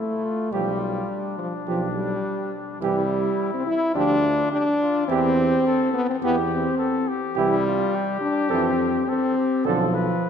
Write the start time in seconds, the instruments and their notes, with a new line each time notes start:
Already playing: french horn A3, trumpet E4
0.25 trumpet F4
0.52 tuba B1, trombone F3, french horn G3, trumpet G4, flugelhorn G4
0.79 trumpet F4
1.10 trumpet D4
1.39 french horn F3
1.68 tuba B1, trombone F3, french horn F3, flugelhorn G4
1.96 french horn G3
2.81 tuba C2, trombone E3, french horn G3, trumpet E4, flugelhorn G4
3.54 french horn C4
3.67 french horn E4
3.95 tuba D2, trombone F3, french horn D4, trumpet F4, flugelhorn G4
4.52 french horn D4, trumpet G4
4.81 trumpet F4
5.08 tuba E2, trombone E3, french horn C4, trumpet E4, flugelhorn G4
5.37 trumpet G4
5.66 trumpet A4
5.94 french horn B3
6.10 french horn C4
6.22 tuba E2, trombone E3, french horn B3, trumpet G4, flugelhorn G4
6.53 french horn C4
6.78 trumpet A4
7.08 trumpet G4
7.35 tuba C2, trombone E3, french horn G3, trumpet E4, flugelhorn G4
7.67 trumpet F4
7.95 trumpet G4
8.21 french horn D4
8.50 tuba F2, trombone E3, french horn C4, flugelhorn A4
9.08 french horn C4, trumpet A4
9.37 trumpet G4
9.65 tuba B1, trombone D3, french horn F3, flugelhorn A4, trumpet A4
9.95 trumpet B4